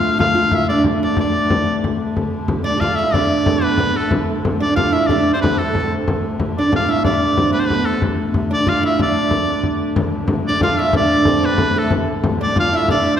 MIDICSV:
0, 0, Header, 1, 5, 480
1, 0, Start_track
1, 0, Tempo, 325556
1, 290, Time_signature, 6, 3, 24, 8
1, 19461, End_track
2, 0, Start_track
2, 0, Title_t, "Shawm"
2, 0, Program_c, 0, 111
2, 0, Note_on_c, 0, 77, 81
2, 280, Note_off_c, 0, 77, 0
2, 289, Note_on_c, 0, 77, 101
2, 803, Note_on_c, 0, 76, 89
2, 825, Note_off_c, 0, 77, 0
2, 1002, Note_off_c, 0, 76, 0
2, 1011, Note_on_c, 0, 74, 82
2, 1236, Note_off_c, 0, 74, 0
2, 1519, Note_on_c, 0, 74, 74
2, 1733, Note_off_c, 0, 74, 0
2, 1771, Note_on_c, 0, 74, 79
2, 2660, Note_off_c, 0, 74, 0
2, 3896, Note_on_c, 0, 74, 89
2, 4133, Note_on_c, 0, 77, 90
2, 4155, Note_off_c, 0, 74, 0
2, 4352, Note_on_c, 0, 76, 88
2, 4374, Note_off_c, 0, 77, 0
2, 4619, Note_on_c, 0, 74, 101
2, 4641, Note_off_c, 0, 76, 0
2, 5349, Note_on_c, 0, 71, 86
2, 5371, Note_off_c, 0, 74, 0
2, 5841, Note_on_c, 0, 69, 68
2, 5863, Note_off_c, 0, 71, 0
2, 6078, Note_off_c, 0, 69, 0
2, 6811, Note_on_c, 0, 74, 90
2, 7009, Note_off_c, 0, 74, 0
2, 7017, Note_on_c, 0, 77, 94
2, 7261, Note_on_c, 0, 76, 85
2, 7283, Note_off_c, 0, 77, 0
2, 7472, Note_on_c, 0, 74, 85
2, 7494, Note_off_c, 0, 76, 0
2, 7850, Note_off_c, 0, 74, 0
2, 7859, Note_on_c, 0, 72, 78
2, 7971, Note_off_c, 0, 72, 0
2, 7980, Note_on_c, 0, 71, 73
2, 8228, Note_on_c, 0, 69, 67
2, 8250, Note_off_c, 0, 71, 0
2, 8773, Note_off_c, 0, 69, 0
2, 9707, Note_on_c, 0, 74, 85
2, 9917, Note_off_c, 0, 74, 0
2, 9967, Note_on_c, 0, 77, 94
2, 10170, Note_on_c, 0, 76, 96
2, 10192, Note_off_c, 0, 77, 0
2, 10379, Note_off_c, 0, 76, 0
2, 10388, Note_on_c, 0, 74, 90
2, 11061, Note_off_c, 0, 74, 0
2, 11095, Note_on_c, 0, 71, 82
2, 11199, Note_on_c, 0, 72, 64
2, 11221, Note_off_c, 0, 71, 0
2, 11292, Note_on_c, 0, 71, 89
2, 11314, Note_off_c, 0, 72, 0
2, 11578, Note_on_c, 0, 69, 73
2, 11600, Note_off_c, 0, 71, 0
2, 11827, Note_off_c, 0, 69, 0
2, 12579, Note_on_c, 0, 74, 90
2, 12807, Note_on_c, 0, 77, 94
2, 12829, Note_off_c, 0, 74, 0
2, 13036, Note_off_c, 0, 77, 0
2, 13045, Note_on_c, 0, 76, 87
2, 13263, Note_off_c, 0, 76, 0
2, 13301, Note_on_c, 0, 74, 85
2, 14425, Note_off_c, 0, 74, 0
2, 15443, Note_on_c, 0, 74, 94
2, 15658, Note_off_c, 0, 74, 0
2, 15667, Note_on_c, 0, 77, 103
2, 15914, Note_on_c, 0, 76, 92
2, 15936, Note_off_c, 0, 77, 0
2, 16149, Note_off_c, 0, 76, 0
2, 16164, Note_on_c, 0, 74, 98
2, 16882, Note_on_c, 0, 71, 88
2, 16904, Note_off_c, 0, 74, 0
2, 17372, Note_on_c, 0, 69, 75
2, 17395, Note_off_c, 0, 71, 0
2, 17594, Note_off_c, 0, 69, 0
2, 18321, Note_on_c, 0, 74, 97
2, 18530, Note_off_c, 0, 74, 0
2, 18574, Note_on_c, 0, 77, 109
2, 18809, Note_on_c, 0, 76, 97
2, 18831, Note_off_c, 0, 77, 0
2, 19024, Note_off_c, 0, 76, 0
2, 19033, Note_on_c, 0, 74, 102
2, 19355, Note_off_c, 0, 74, 0
2, 19408, Note_on_c, 0, 72, 87
2, 19461, Note_off_c, 0, 72, 0
2, 19461, End_track
3, 0, Start_track
3, 0, Title_t, "Oud"
3, 0, Program_c, 1, 24
3, 0, Note_on_c, 1, 65, 88
3, 251, Note_off_c, 1, 65, 0
3, 277, Note_on_c, 1, 65, 86
3, 497, Note_off_c, 1, 65, 0
3, 514, Note_on_c, 1, 65, 73
3, 747, Note_off_c, 1, 65, 0
3, 766, Note_on_c, 1, 64, 69
3, 1018, Note_off_c, 1, 64, 0
3, 1031, Note_on_c, 1, 62, 71
3, 1247, Note_off_c, 1, 62, 0
3, 1516, Note_on_c, 1, 62, 74
3, 1737, Note_off_c, 1, 62, 0
3, 1755, Note_on_c, 1, 62, 64
3, 2652, Note_off_c, 1, 62, 0
3, 3894, Note_on_c, 1, 62, 92
3, 4086, Note_off_c, 1, 62, 0
3, 4095, Note_on_c, 1, 67, 57
3, 4150, Note_off_c, 1, 67, 0
3, 4156, Note_on_c, 1, 65, 85
3, 4398, Note_off_c, 1, 65, 0
3, 4404, Note_on_c, 1, 64, 77
3, 4632, Note_off_c, 1, 64, 0
3, 4638, Note_on_c, 1, 62, 80
3, 5331, Note_on_c, 1, 59, 76
3, 5377, Note_off_c, 1, 62, 0
3, 5568, Note_off_c, 1, 59, 0
3, 5585, Note_on_c, 1, 59, 73
3, 5835, Note_off_c, 1, 59, 0
3, 5841, Note_on_c, 1, 57, 55
3, 6061, Note_off_c, 1, 57, 0
3, 6788, Note_on_c, 1, 62, 84
3, 7016, Note_off_c, 1, 62, 0
3, 7022, Note_on_c, 1, 65, 84
3, 7255, Note_off_c, 1, 65, 0
3, 7261, Note_on_c, 1, 64, 79
3, 7516, Note_off_c, 1, 64, 0
3, 7527, Note_on_c, 1, 62, 78
3, 7881, Note_off_c, 1, 62, 0
3, 7887, Note_on_c, 1, 60, 61
3, 8005, Note_off_c, 1, 60, 0
3, 8006, Note_on_c, 1, 59, 67
3, 8233, Note_off_c, 1, 59, 0
3, 8239, Note_on_c, 1, 57, 67
3, 8457, Note_on_c, 1, 62, 43
3, 8485, Note_off_c, 1, 57, 0
3, 8527, Note_off_c, 1, 62, 0
3, 8553, Note_on_c, 1, 60, 61
3, 8769, Note_off_c, 1, 60, 0
3, 9708, Note_on_c, 1, 62, 83
3, 9904, Note_off_c, 1, 62, 0
3, 9910, Note_on_c, 1, 65, 79
3, 10149, Note_off_c, 1, 65, 0
3, 10154, Note_on_c, 1, 64, 68
3, 10379, Note_off_c, 1, 64, 0
3, 10413, Note_on_c, 1, 62, 75
3, 10874, Note_off_c, 1, 62, 0
3, 10879, Note_on_c, 1, 60, 60
3, 11099, Note_on_c, 1, 59, 68
3, 11125, Note_off_c, 1, 60, 0
3, 11201, Note_off_c, 1, 59, 0
3, 11296, Note_on_c, 1, 59, 64
3, 11788, Note_off_c, 1, 59, 0
3, 12542, Note_on_c, 1, 62, 77
3, 12774, Note_off_c, 1, 62, 0
3, 12780, Note_on_c, 1, 65, 75
3, 13015, Note_off_c, 1, 65, 0
3, 13021, Note_on_c, 1, 64, 73
3, 13248, Note_off_c, 1, 64, 0
3, 13254, Note_on_c, 1, 62, 71
3, 14402, Note_off_c, 1, 62, 0
3, 15464, Note_on_c, 1, 62, 93
3, 15669, Note_off_c, 1, 62, 0
3, 15675, Note_on_c, 1, 65, 95
3, 15893, Note_off_c, 1, 65, 0
3, 15908, Note_on_c, 1, 64, 85
3, 16119, Note_off_c, 1, 64, 0
3, 16125, Note_on_c, 1, 62, 83
3, 16622, Note_off_c, 1, 62, 0
3, 16628, Note_on_c, 1, 60, 77
3, 16854, Note_on_c, 1, 59, 83
3, 16871, Note_off_c, 1, 60, 0
3, 17336, Note_off_c, 1, 59, 0
3, 17342, Note_on_c, 1, 57, 64
3, 17563, Note_off_c, 1, 57, 0
3, 18295, Note_on_c, 1, 62, 86
3, 18523, Note_off_c, 1, 62, 0
3, 18529, Note_on_c, 1, 65, 83
3, 18768, Note_off_c, 1, 65, 0
3, 18774, Note_on_c, 1, 64, 87
3, 19018, Note_off_c, 1, 64, 0
3, 19028, Note_on_c, 1, 62, 84
3, 19461, Note_off_c, 1, 62, 0
3, 19461, End_track
4, 0, Start_track
4, 0, Title_t, "Hurdy-gurdy"
4, 0, Program_c, 2, 110
4, 0, Note_on_c, 2, 50, 67
4, 0, Note_on_c, 2, 57, 70
4, 3175, Note_off_c, 2, 50, 0
4, 3175, Note_on_c, 2, 50, 66
4, 3178, Note_off_c, 2, 57, 0
4, 3178, Note_on_c, 2, 57, 65
4, 8948, Note_off_c, 2, 50, 0
4, 8948, Note_on_c, 2, 50, 67
4, 8951, Note_off_c, 2, 57, 0
4, 8951, Note_on_c, 2, 57, 64
4, 14720, Note_off_c, 2, 57, 0
4, 14720, Note_on_c, 2, 57, 72
4, 14722, Note_off_c, 2, 50, 0
4, 14722, Note_on_c, 2, 50, 68
4, 19461, Note_off_c, 2, 50, 0
4, 19461, Note_off_c, 2, 57, 0
4, 19461, End_track
5, 0, Start_track
5, 0, Title_t, "Frame drum"
5, 47, Note_on_c, 9, 64, 28
5, 194, Note_off_c, 9, 64, 0
5, 295, Note_on_c, 9, 64, 91
5, 443, Note_off_c, 9, 64, 0
5, 523, Note_on_c, 9, 64, 25
5, 671, Note_off_c, 9, 64, 0
5, 755, Note_on_c, 9, 64, 81
5, 902, Note_off_c, 9, 64, 0
5, 1011, Note_on_c, 9, 64, 26
5, 1159, Note_off_c, 9, 64, 0
5, 1242, Note_on_c, 9, 64, 78
5, 1390, Note_off_c, 9, 64, 0
5, 1473, Note_on_c, 9, 64, 29
5, 1621, Note_off_c, 9, 64, 0
5, 1719, Note_on_c, 9, 64, 80
5, 1867, Note_off_c, 9, 64, 0
5, 1973, Note_on_c, 9, 64, 24
5, 2120, Note_off_c, 9, 64, 0
5, 2215, Note_on_c, 9, 64, 91
5, 2363, Note_off_c, 9, 64, 0
5, 2475, Note_on_c, 9, 64, 25
5, 2623, Note_off_c, 9, 64, 0
5, 2713, Note_on_c, 9, 64, 73
5, 2860, Note_off_c, 9, 64, 0
5, 3193, Note_on_c, 9, 64, 71
5, 3340, Note_off_c, 9, 64, 0
5, 3660, Note_on_c, 9, 64, 80
5, 3808, Note_off_c, 9, 64, 0
5, 4147, Note_on_c, 9, 64, 73
5, 4294, Note_off_c, 9, 64, 0
5, 4626, Note_on_c, 9, 64, 87
5, 4774, Note_off_c, 9, 64, 0
5, 5102, Note_on_c, 9, 64, 98
5, 5250, Note_off_c, 9, 64, 0
5, 5566, Note_on_c, 9, 64, 75
5, 5714, Note_off_c, 9, 64, 0
5, 6058, Note_on_c, 9, 64, 85
5, 6205, Note_off_c, 9, 64, 0
5, 6558, Note_on_c, 9, 64, 88
5, 6706, Note_off_c, 9, 64, 0
5, 7034, Note_on_c, 9, 64, 77
5, 7182, Note_off_c, 9, 64, 0
5, 7506, Note_on_c, 9, 64, 82
5, 7654, Note_off_c, 9, 64, 0
5, 8016, Note_on_c, 9, 64, 93
5, 8164, Note_off_c, 9, 64, 0
5, 8475, Note_on_c, 9, 64, 73
5, 8623, Note_off_c, 9, 64, 0
5, 8726, Note_on_c, 9, 64, 24
5, 8873, Note_off_c, 9, 64, 0
5, 8960, Note_on_c, 9, 64, 87
5, 9107, Note_off_c, 9, 64, 0
5, 9430, Note_on_c, 9, 64, 79
5, 9577, Note_off_c, 9, 64, 0
5, 9917, Note_on_c, 9, 64, 79
5, 10064, Note_off_c, 9, 64, 0
5, 10387, Note_on_c, 9, 64, 84
5, 10535, Note_off_c, 9, 64, 0
5, 10871, Note_on_c, 9, 64, 81
5, 11019, Note_off_c, 9, 64, 0
5, 11356, Note_on_c, 9, 64, 76
5, 11504, Note_off_c, 9, 64, 0
5, 11823, Note_on_c, 9, 64, 85
5, 11971, Note_off_c, 9, 64, 0
5, 12299, Note_on_c, 9, 64, 83
5, 12447, Note_off_c, 9, 64, 0
5, 12776, Note_on_c, 9, 64, 69
5, 12924, Note_off_c, 9, 64, 0
5, 13257, Note_on_c, 9, 64, 79
5, 13405, Note_off_c, 9, 64, 0
5, 13502, Note_on_c, 9, 64, 21
5, 13650, Note_off_c, 9, 64, 0
5, 13725, Note_on_c, 9, 64, 73
5, 13872, Note_off_c, 9, 64, 0
5, 13975, Note_on_c, 9, 64, 23
5, 14123, Note_off_c, 9, 64, 0
5, 14204, Note_on_c, 9, 64, 65
5, 14351, Note_off_c, 9, 64, 0
5, 14455, Note_on_c, 9, 64, 26
5, 14602, Note_off_c, 9, 64, 0
5, 14688, Note_on_c, 9, 64, 99
5, 14835, Note_off_c, 9, 64, 0
5, 15151, Note_on_c, 9, 64, 91
5, 15298, Note_off_c, 9, 64, 0
5, 15645, Note_on_c, 9, 64, 84
5, 15792, Note_off_c, 9, 64, 0
5, 16117, Note_on_c, 9, 64, 84
5, 16264, Note_off_c, 9, 64, 0
5, 16591, Note_on_c, 9, 64, 88
5, 16738, Note_off_c, 9, 64, 0
5, 17071, Note_on_c, 9, 64, 87
5, 17218, Note_off_c, 9, 64, 0
5, 17554, Note_on_c, 9, 64, 93
5, 17701, Note_off_c, 9, 64, 0
5, 18040, Note_on_c, 9, 64, 99
5, 18188, Note_off_c, 9, 64, 0
5, 18518, Note_on_c, 9, 64, 77
5, 18665, Note_off_c, 9, 64, 0
5, 18993, Note_on_c, 9, 64, 75
5, 19141, Note_off_c, 9, 64, 0
5, 19251, Note_on_c, 9, 64, 24
5, 19399, Note_off_c, 9, 64, 0
5, 19461, End_track
0, 0, End_of_file